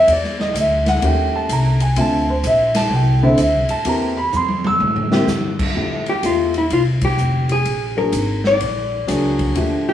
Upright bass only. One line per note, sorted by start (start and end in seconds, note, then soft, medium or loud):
0.07 0.53 E2 medium
0.54 1.00 D2 loud
1.02 1.48 D#2 medium
1.49 1.95 C2 medium
1.96 2.42 D2 medium
2.43 2.90 A#1 loud
2.90 3.37 C2 medium
3.38 3.54 D2 medium
3.54 3.69 C2 medium
3.69 3.84 A1 medium
3.85 4.31 E2 medium
4.33 4.79 F2 medium
4.80 5.26 A2 medium
5.27 5.73 G2 medium
5.75 6.21 F2 medium
6.23 6.69 E2 medium
6.70 7.16 C2 medium
7.17 7.63 F1 medium
7.65 8.11 A#1 medium
8.12 8.59 G#1 medium
8.60 9.06 A#1 medium
9.08 9.54 C#2 medium
9.55 9.93 D#2 medium